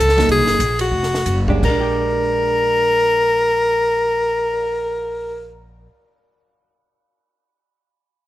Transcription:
0.00 0.28 C#2 medium
0.00 0.30 A4 medium
0.00 hi-hat pedal medium
0.00 ride medium
0.09 snare soft
0.17 0.57 F#3 medium
0.17 0.58 A#3 medium
0.17 0.58 D#4 medium
0.17 snare soft
0.17 ride soft
0.29 0.39 C2 medium
0.29 0.77 G#4 medium
0.29 kick soft
0.29 ride medium
0.39 0.49 A#1 medium
0.47 0.59 F#1 medium
0.47 snare soft
0.47 ride soft
0.59 0.91 A#1 medium
0.59 kick soft
0.59 hi-hat pedal soft
0.59 ride medium
0.79 1.45 F#4 medium
0.79 ride medium
0.91 1.25 F1 medium
0.91 kick soft
1.03 snare soft
1.14 snare soft
1.26 1.62 F#1 medium
1.26 kick soft
1.26 hi-hat pedal medium
1.26 ride medium
1.48 1.54 G#3 medium
1.48 1.68 D4 medium
1.48 1.79 G4 medium
1.48 kick soft
1.55 5.82 G#3 medium
1.63 5.86 A#1 medium
1.63 5.48 A#4 medium
1.63 kick soft
1.63 crash medium
1.69 5.96 D4 medium
1.81 6.07 G4 medium
1.87 cymbal swell soft

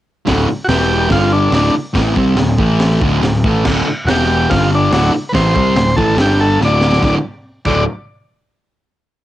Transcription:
0.26 0.46 D1 medium
0.26 0.47 D2 medium
0.26 0.47 A2 loud
0.26 0.47 D3 loud
0.26 kick loud
0.26 snare loud
0.26 open hi-hat medium
0.48 muted distorted electric guitar stroke medium
0.48 muted picked electric bass stroke soft
0.65 0.67 F#4 medium
0.69 1.08 E1 medium
0.69 1.08 E2 medium
0.69 1.10 B2 loud
0.69 1.10 E3 loud
0.69 1.10 G4 medium
0.69 snare loud
0.69 open hi-hat medium
1.09 1.50 G1 medium
1.09 1.51 G2 loud
1.09 1.51 D3 loud
1.09 1.52 G3 loud
1.09 1.32 F4 medium
1.09 kick loud
1.09 snare loud
1.09 open hi-hat medium
1.33 1.53 D4 medium
1.51 1.71 D1 medium
1.51 1.71 D2 medium
1.51 1.74 A2 loud
1.51 1.74 D3 medium
1.51 snare loud
1.51 open hi-hat medium
1.55 1.75 D4 medium
1.71 muted picked electric bass stroke soft
1.71 muted distorted electric guitar stroke medium
1.93 2.15 A1 medium
1.93 2.15 A2 medium
1.93 2.16 E3 medium
1.93 2.16 A3 medium
1.93 kick loud
1.93 snare loud
1.93 open hi-hat medium
2.15 2.35 C2 loud
2.15 2.37 C3 medium
2.15 2.37 G3 loud
2.15 2.38 C4 medium
2.15 kick loud
2.36 2.57 D1 medium
2.36 2.55 D2 medium
2.36 2.56 A2 medium
2.36 snare loud
2.36 open hi-hat medium
2.58 2.98 A1 loud
2.58 3.01 A2 loud
2.58 3.01 E3 loud
2.58 3.02 A3 loud
2.58 kick loud
2.80 snare loud
2.80 open hi-hat medium
3.01 3.21 D1 medium
3.01 3.22 D2 medium
3.01 3.22 A2 medium
3.01 3.23 D3 medium
3.01 kick loud
3.22 3.42 D1 medium
3.22 3.40 D2 medium
3.22 3.40 A2 medium
3.22 snare loud
3.22 open hi-hat medium
3.44 3.64 A1 loud
3.44 3.64 A2 medium
3.44 3.65 E3 medium
3.44 3.66 A3 loud
3.44 kick loud
3.65 3.83 D1 loud
3.65 3.86 D2 medium
3.65 3.86 A2 medium
3.65 3.87 D3 loud
3.65 kick loud
3.65 snare loud
3.65 crash loud
3.83 muted picked electric bass stroke soft
3.88 muted distorted electric guitar stroke medium
4.05 4.46 E1 medium
4.05 4.49 E2 loud
4.05 4.50 B2 loud
4.05 4.09 F#4 medium
4.05 snare loud
4.05 open hi-hat medium
4.09 4.50 E3 loud
4.09 4.50 G4 loud
4.50 4.90 G1 loud
4.50 4.91 G2 loud
4.50 4.92 D3 loud
4.50 4.92 G3 loud
4.50 4.70 F4 medium
4.50 kick loud
4.50 snare loud
4.50 open hi-hat medium
4.75 4.92 D4 medium
4.91 5.11 D1 medium
4.91 5.12 D2 loud
4.91 5.13 A2 loud
4.91 5.13 D3 loud
4.91 5.12 F#3 medium
4.91 5.13 D4 loud
4.91 snare loud
4.91 open hi-hat medium
5.12 muted picked electric bass stroke soft
5.12 muted distorted electric guitar stroke medium
5.29 5.54 A2 medium
5.29 5.32 B4 medium
5.34 5.54 A1 medium
5.34 5.55 E3 loud
5.34 5.55 A3 loud
5.34 5.96 C5 loud
5.34 kick loud
5.34 snare loud
5.34 open hi-hat medium
5.54 5.74 C2 loud
5.54 5.75 C3 medium
5.54 5.76 G3 medium
5.54 5.76 C4 medium
5.54 kick loud
5.75 5.95 D1 medium
5.75 5.93 D2 medium
5.75 5.94 A2 medium
5.75 snare loud
5.75 open hi-hat medium
5.96 6.17 A1 loud
5.96 6.17 A2 loud
5.96 6.17 E3 loud
5.96 6.18 A3 loud
5.96 6.17 A4 medium
5.96 kick loud
6.17 6.57 G1 medium
6.17 6.59 G2 loud
6.17 6.59 D3 loud
6.17 6.60 G3 loud
6.17 snare loud
6.17 open hi-hat medium
6.21 6.40 G4 medium
6.40 6.60 A4 medium
6.61 6.99 D1 medium
6.61 7.02 D2 medium
6.61 7.02 A2 loud
6.61 7.03 D3 loud
6.61 snare medium
6.65 7.03 D5 loud
6.81 snare medium
6.93 snare medium
7.02 7.14 D1 medium
7.02 7.15 D2 medium
7.02 7.16 A2 loud
7.02 7.16 D3 loud
7.02 7.15 D5 medium
7.02 kick loud
7.02 snare medium
7.65 7.85 D1 loud
7.65 7.82 D2 loud
7.65 7.82 A2 loud
7.65 7.83 D3 loud
7.65 7.85 D5 medium
7.65 kick loud
7.65 crash medium

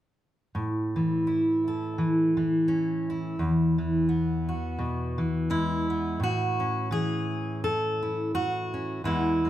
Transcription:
0.55 3.35 A2 medium
0.96 1.98 E3 soft
1.27 3.09 E4 soft
1.68 3.36 A4 soft
1.98 2.37 E3 medium
2.37 3.77 E3 medium
2.68 3.35 C#4 medium
3.10 4.08 E4 soft
3.39 6.19 E2 medium
3.78 5.17 E3 medium
4.09 5.89 B3 medium
4.49 5.50 F#4 soft
4.79 5.19 B2 medium
5.18 6.89 E3 medium
5.50 6.21 G#3 medium
5.50 6.22 E4 medium
5.90 6.22 B3 soft
6.20 9.00 A2 medium
6.20 6.92 F#4 medium
6.60 8.72 C#4 soft
6.91 9.04 E3 medium
6.91 7.63 G#4 medium
7.64 8.34 A4 medium
8.03 9.01 E4 soft
8.35 9.05 F#4 medium
8.74 9.01 C#4 soft
9.04 9.50 E2 medium
9.04 9.50 E3 soft
9.04 9.44 G#3 soft
9.04 9.50 B3 soft
9.04 9.50 E4 medium
9.45 9.50 G#3 soft

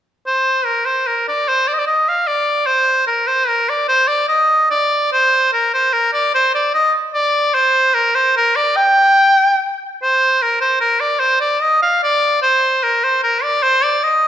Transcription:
0.26 0.67 C5 medium
0.65 0.87 A#4 medium
0.85 1.09 C5 medium
1.07 1.27 A#4 medium
1.28 1.50 D5 medium
1.48 1.69 C5 medium
1.68 1.75 D5 medium
1.73 1.80 D#5 medium
1.78 1.86 D5 medium
1.87 2.10 D#5 medium
2.09 2.28 F5 medium
2.27 2.68 D5 medium
2.66 3.06 C5 medium
3.07 3.28 A#4 medium
3.27 3.49 C5 medium
3.48 3.71 A#4 medium
3.69 3.88 D5 medium
3.88 4.09 C5 medium
4.08 4.28 D5 medium
4.28 4.67 D#5 medium
4.70 5.09 D5 medium
5.12 5.50 C5 medium
5.53 5.72 A#4 medium
5.73 5.94 C5 medium
5.93 6.12 A#4 medium
6.13 6.32 D5 medium
6.34 6.53 C5 medium
6.54 6.73 D5 medium
6.74 6.93 D#5 medium
7.14 7.55 D5 medium
7.54 7.95 C5 medium
7.94 8.17 A#4 medium
8.15 8.36 C5 medium
8.36 8.57 A#4 medium
8.56 8.77 D5 medium
8.76 9.78 G5 loud
10.01 10.43 C5 medium
10.42 10.60 A#4 medium
10.61 10.79 C5 medium
10.80 11.01 A#4 medium
11.00 11.21 D5 medium
11.19 11.40 C5 medium
11.40 11.62 D5 medium
11.61 11.81 D#5 medium
11.82 12.00 F5 medium
12.03 12.40 D5 medium
12.42 12.85 C5 medium
12.83 13.05 A#4 medium
13.03 13.23 C5 medium
13.23 13.44 A#4 medium
13.43 13.64 D5 medium
13.63 13.85 C5 medium
13.84 14.05 D5 medium
14.03 14.28 D#5 medium

